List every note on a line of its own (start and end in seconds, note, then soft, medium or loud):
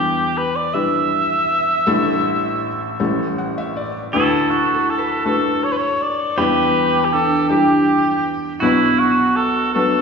0.00 1.83 E2 soft
0.00 1.83 E3 medium
0.00 0.42 G3 medium
0.00 0.42 D4 medium
0.00 0.42 E4 medium
0.00 0.39 G4 medium
0.00 0.42 B4 medium
0.38 0.57 B4 medium
0.56 0.75 D5 loud
0.74 1.54 G3 medium
0.74 1.54 D4 soft
0.74 1.54 E4 soft
0.74 1.54 B4 medium
0.74 3.37 E5 loud
1.87 2.96 A1 medium
1.87 2.96 A2 medium
1.87 2.67 G3 medium
1.87 2.67 D4 medium
1.87 2.67 E4 medium
1.87 2.67 A4 medium
3.00 4.10 A1 medium
3.00 4.10 A2 medium
3.00 3.80 G3 medium
3.00 3.80 C#4 medium
3.00 3.81 E4 medium
3.00 3.81 A4 medium
3.38 3.56 F#5 medium
3.58 3.75 E5 medium
3.76 4.11 D5 medium
4.13 6.34 D2 soft
4.13 6.34 D3 soft
4.13 4.94 A3 medium
4.13 4.94 D4 medium
4.13 4.52 E4 medium
4.13 4.93 F#4 medium
4.13 6.45 A4 medium
4.13 4.94 B4 medium
4.50 7.12 E4 medium
4.50 4.91 F#4 medium
4.74 6.94 A4 soft
4.90 5.25 A4 medium
4.98 7.03 B4 soft
5.25 6.05 A3 medium
5.25 6.05 D4 soft
5.25 6.05 F#4 medium
5.25 5.65 A4 medium
5.25 6.05 B4 medium
5.64 5.74 C#5 medium
5.72 5.79 B4 medium
5.77 6.03 C#5 medium
6.02 6.39 D5 medium
6.37 8.58 E2 medium
6.37 8.58 E3 medium
6.37 7.17 G3 medium
6.37 7.17 D4 medium
6.37 7.17 E4 medium
6.37 8.69 G4 medium
6.37 7.17 B4 medium
6.37 7.06 B4 loud
7.05 7.14 G4 medium
7.13 9.93 D4 medium
7.13 7.48 A4 medium
7.35 9.71 G4 soft
7.49 8.29 G3 medium
7.49 8.29 D4 soft
7.49 8.29 E4 soft
7.49 8.30 G4 medium
8.60 10.02 B1 medium
8.60 10.02 B2 medium
8.60 9.41 F#3 medium
8.60 9.41 B3 medium
8.60 9.41 D4 medium
8.60 9.01 E4 loud
8.60 10.02 F#4 medium
8.60 9.42 B4 medium
8.99 9.37 F#4 medium
9.36 9.73 A4 medium
9.74 10.02 F#3 medium
9.74 10.02 B3 medium
9.74 10.02 D4 medium
9.74 10.02 A4 medium
9.74 10.02 B4 medium